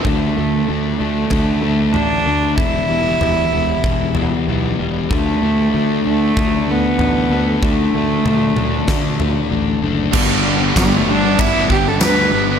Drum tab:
CC |--------|--------|--------|--------|
RD |--------|--------|--------|--------|
SD |--------|--------|--------|----o---|
T2 |--------|--------|--------|--oo----|
FT |o---o-o-|--o--o--|o---o-o-|--o--o--|
BD |o---o---|o---o---|o---o---|o---o---|

CC |x-------|
RD |--b-b-b-|
SD |--o---o-|
T2 |--------|
FT |--------|
BD |o-o-oo--|